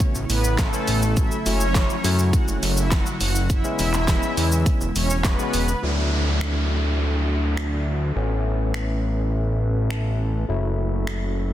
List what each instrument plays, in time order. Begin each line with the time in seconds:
Already playing: analog synth pad C#3 A3 B3 E4, tine electric piano A3 B3 C#4 F#4
0.00 kick, closed hi-hat, shaker
0.15 analog synth bass A1, shaker
0.29 analog synth bass A1, supersaw synth B3 B4, open hi-hat, shaker
0.44 shaker
0.58 tine electric piano A3 B3 C#4 E4, supersaw synth A3 A4, kick, snare, clap, closed hi-hat, shaker
0.73 tine electric piano A3 B3 C#4 E4, shaker
0.88 analog synth bass A1, open hi-hat, shaker
1.02 shaker
1.17 analog synth pad C#3 F#3 A3 E4, tine electric piano F#3 A3 C#4 E4, supersaw synth E4 E5, kick, closed hi-hat, shaker
1.31 shaker
1.46 analog synth bass F#1, tine electric piano F#3 A3 C#4 E4, supersaw synth C#4 C#5, open hi-hat, shaker
1.61 shaker
1.75 tine electric piano F#3 A3 C#4 E4, kick, snare, clap, closed hi-hat, shaker
1.90 shaker
2.04 analog synth bass F#2, tine electric piano F#3 A3 C#4 E4, open hi-hat, shaker
2.19 shaker
2.33 supersaw synth F#4 F#5, kick, closed hi-hat, shaker
2.48 analog synth bass F#1, shaker
2.62 analog synth bass F#1, open hi-hat, shaker
2.77 supersaw synth E4 E5, shaker
2.91 supersaw synth F#4 F#5, kick, snare, clap, closed hi-hat, shaker
3.06 shaker
3.21 analog synth bass F#1, supersaw synth F#4 F#5, open hi-hat, shaker
3.35 shaker
3.50 analog synth pad G#3 B3, supersaw synth E4 E5, kick, closed hi-hat, shaker
3.64 tine electric piano G#3 B3 C#4 E4, shaker
3.79 analog synth bass E1, supersaw synth E4 E5, open hi-hat, shaker
3.93 clap, shaker
4.08 tine electric piano G#3 B3 C#4 E4, kick, snare, clap, closed hi-hat, shaker
4.23 shaker
4.37 analog synth bass E2, open hi-hat, shaker
4.52 shaker
4.66 kick, closed hi-hat, shaker
4.81 analog synth bass E1, shaker
4.95 analog synth bass E1, supersaw synth C#4 C#5, open hi-hat, shaker
5.10 shaker
5.24 tine electric piano G#3 B3 C#4 E4, supersaw synth B3 B4, kick, snare, clap, closed hi-hat, shaker
5.39 tine electric piano G#3 B3 C#4 F#4, shaker
5.54 analog synth bass E1, open hi-hat, shaker
5.68 shaker
5.82 analog synth bass D2, tine electric piano F#3 D4 E4, analog synth pad D4 F#4 A4 E5, downlifter
6.41 finger snap
7.57 finger snap
8.15 analog synth bass A1, tine electric piano A3 B3 C#4, analog synth pad C#4 B4
8.74 finger snap
9.90 tine electric piano A5, finger snap
10.48 analog synth bass F#1, tine electric piano F#3 A3 E4, analog synth pad F#4 A4
11.07 finger snap